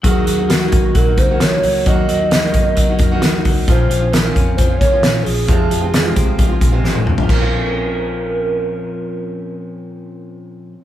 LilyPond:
<<
  \new Staff \with { instrumentName = "Soft synth lead" } { \time 4/4 \key bes \minor \tempo 4 = 133 aes'4 ges'4 bes'8 c''8 des''4 | ees''2.~ ees''8 r8 | c''4 bes'4 c''8 des''4 aes'8~ | aes'2. r4 |
bes'1~ | bes'1 | }
  \new Staff \with { instrumentName = "Steel-string acoustic guitar" } { \time 4/4 \key bes \minor <ees bes ees' ges'>8. <bes ees' ges'>8 <ees bes ees' ges'>4 <bes ees' ges'>8 <ees bes ees' ges'>8 <bes ees' ges'>8. | <ees bes ees' ges'>8. <bes ees' ges'>8 <ees bes ees' ges'>4 <bes ees' ges'>8 <ees bes ees' ges'>8 <bes ees' ges'>8. | <bes, f c' des' f'>8. <c' des' f'>8 <bes, f c' des' f'>4 <c' des' f'>8 <bes, f c' des' f'>8 <c' des' f'>8. | <f, c f aes c' f'>8. <f aes c' f'>8 <f, c f aes c' f'>4 <f aes c' f'>8 <f, c f aes c' f'>8 <f aes c' f'>8. |
<bes, f c' des' f'>1~ | <bes, f c' des' f'>1 | }
  \new Staff \with { instrumentName = "Clean electric guitar" } { \clef bass \time 4/4 \key bes \minor ges8 ges8 bes8 ees'8 ges8 bes8 des'16 ees'16 ges8 | ges8 ges8 bes8 ees'8 ges8 bes8 ees'8 ges8 | f8 f8 bes16 c'16 des'8 f8 bes16 r16 des'8 f8 | f8 f8 aes8 c'8 f8 aes8 c'8 f8 |
<f c' des'>1~ | <f c' des'>1 | }
  \new Staff \with { instrumentName = "Picked electric bass" } { \clef bass \time 4/4 \key bes \minor ees,8 ees,4 aes,,8 bes,,8 des,4 des,8 | ees,8 ees,4 ges,4 f,8 ees,8 des,8 | bes,,8 bes,,4 f,,8 f,8 aes,8 bes,8 bes,,8 | f,,8 f,,4 c,4 bes,,8 aes,,8 f,,8 |
bes,,1~ | bes,,1 | }
  \new DrumStaff \with { instrumentName = "Drums" } \drummode { \time 4/4 <hh bd>8 hh8 <hh sn>8 <hh bd>8 <hh bd>8 <hh bd>8 <hh sn>8 hho8 | <hh bd>8 hh8 <hh sn>8 <hh bd>8 <hh bd>8 <hh bd>8 <hh sn>8 <hho bd>8 | <hh bd>8 hh8 <hh sn>8 <hh bd>8 <hh bd>8 <hh bd>8 <hh sn>8 hho8 | <hh bd>8 hh8 <hh sn>8 <hh bd>8 <hh bd>8 <hh bd>8 sn16 tommh16 toml16 tomfh16 |
<cymc bd>4 r4 r4 r4 | r4 r4 r4 r4 | }
>>